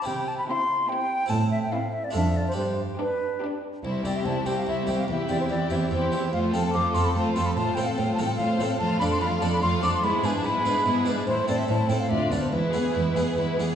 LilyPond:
<<
  \new Staff \with { instrumentName = "Flute" } { \time 3/4 \key c \major \tempo 4 = 145 g''8 a''16 b''16 c'''4 g''4 | a''8 e''16 g''16 f''8 e''16 d''16 e''8 d''16 c''16 | c''4 b'4. r8 | c''8 d''16 e''16 a''8 g''16 f''16 e''8 g''16 f''16 |
e''8 d''16 c''16 d''8 e''16 d''16 c''4 | f''8 g''16 a''16 d'''8 c'''16 b''16 a''8 c'''16 b''16 | a''8 g''16 f''16 g''8 a''16 g''16 f''4 | \key e \phrygian a''8 b''16 c'''16 b''8 a''16 b''16 c'''8 d'''16 c'''16 |
b''8 gis''16 a''16 b''4.~ b''16 r16 | c''8 d''16 e''16 a''8 g''16 f''16 e''8 d''16 c''16 | b'2~ b'8 r8 | }
  \new Staff \with { instrumentName = "Violin section" } { \time 3/4 \key c \major r4 g'4 g'4 | r4 a'4 a'4 | r4 g'4 g'4 | c''8 g'8 c''8 g'8 c''8 g'8 |
e'8 g'8 e'8 g'8 e'8 g'8 | c''8 a'8 c''8 a'8 c''8 a'8 | c''8 a'8 c''8 a'8 c''8 a'8 | \key e \phrygian f''8 d''8 f''8 d''8 f''8 d''8 |
gis'8 b'8 gis'8 b'8 gis'8 b'8 | c''8 a'8 c''8 a'8 d''8 b'8 | b'8 gis'8 b'8 gis'8 b'8 gis'8 | }
  \new Staff \with { instrumentName = "Violin section" } { \time 3/4 \key c \major r4 e'4 e'4 | r4 e'4 d'4 | r4 d'4 d'4 | e'8 g'8 e'8 g'8 e'8 g'8 |
g'8 e'8 g'8 e'8 g'8 e'8 | f'8 a'8 f'8 a'8 f'8 a'8 | f'8 a'8 f'8 a'8 f'8 a'8 | \key e \phrygian f'8 a'8 f'8 a'8 f'8 a'8 |
e'8 gis'8 e'8 gis'8 e'8 gis'8 | e'8 c'8 e'8 c'8 f'8 d'8 | e'8 gis'8 e'8 gis'8 e'8 gis'8 | }
  \new Staff \with { instrumentName = "Harpsichord" } { \time 3/4 \key c \major <c' e' g'>2. | <c' e' a'>2 <d' f' a'>4 | <d' g'>2. | r8 <c' e' g'>4 <c' e' g'>4 <c' e' g'>8 |
r8 <c' g'>4 <c' g'>4 <c' g'>8 | r8 <c' f' a'>4 <c' f' a'>4 <c' f' a'>8 | r8 <c' f' a'>4 <c' f' a'>4 <c' f' a'>8 | \key e \phrygian r8 <d' f' d''>4 <d' f' d''>4 <d' f' d''>8 |
r8 <d' e' b'>4 <d' e' b'>4 <d' e' b'>8 | r8 <c' e' a'>4 <c' e' a'>8 r8 <b f' b'>8 | r8 <b e' gis'>4 <b e' gis'>4 <b e' gis'>8 | }
  \new Staff \with { instrumentName = "Harpsichord" } { \clef bass \time 3/4 \key c \major c4 r2 | a,4 r4 f,4 | g,4 r2 | c,8 c,8 c,8 c,8 c,8 c,8 |
e,8 e,8 e,8 e,8 e,8 e,8 | f,8 f,8 f,8 f,8 f,8 f,8 | a,8 a,8 a,8 a,8 a,8 a,8 | \key e \phrygian f,8 f,8 f,8 f,8 f,8 f,8 |
gis,8 gis,8 gis,8 gis,8 gis,8 gis,8 | a,8 a,8 a,8 a,8 d,8 d,8 | e,8 e,8 e,8 e,8 e,8 e,8 | }
  \new Staff \with { instrumentName = "Viola section" } { \time 3/4 \key c \major r4 c'4 c'4 | r4 c'4 d'4 | r4 d'4 d'4 | g8 c'8 g8 c'8 g8 c'8 |
e'8 c'8 e'8 c'8 e'8 c'8 | a8 c'8 a8 c'8 a8 c'8 | a8 c'8 a8 c'8 a8 c'8 | \key e \phrygian a8 d'8 a8 d'8 a8 d'8 |
b8 d'8 b8 d'8 b8 d'8 | a8 c'8 a8 c'8 d'8 b8 | gis8 b8 gis8 b8 gis8 b8 | }
  \new Staff \with { instrumentName = "Cello section" } { \clef bass \time 3/4 \key c \major c4 r2 | a,4 r4 f,4 | g,4 r2 | c,8 c,8 c,8 c,8 c,8 c,8 |
e,8 e,8 e,8 e,8 e,8 e,8 | f,8 f,8 f,8 f,8 f,8 f,8 | a,8 a,8 a,8 a,8 a,8 a,8 | \key e \phrygian f,8 f,8 f,8 f,8 f,8 f,8 |
gis,8 gis,8 gis,8 gis,8 gis,8 gis,8 | a,8 a,8 a,8 a,8 d,8 d,8 | e,8 e,8 e,8 e,8 e,8 e,8 | }
>>